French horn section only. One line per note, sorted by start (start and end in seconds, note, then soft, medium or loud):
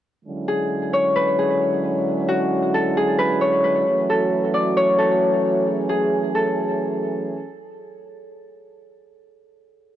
0.25 3.83 D3 medium
0.25 3.83 F#3 medium
0.25 3.83 G#3 medium
0.25 3.83 C#4 medium
0.25 3.83 E4 medium
3.86 7.44 E3 medium
3.86 7.44 F#3 medium
3.86 7.44 A3 medium
3.86 7.44 C#4 medium
3.86 5.65 F#4 medium
5.67 7.46 G#4 medium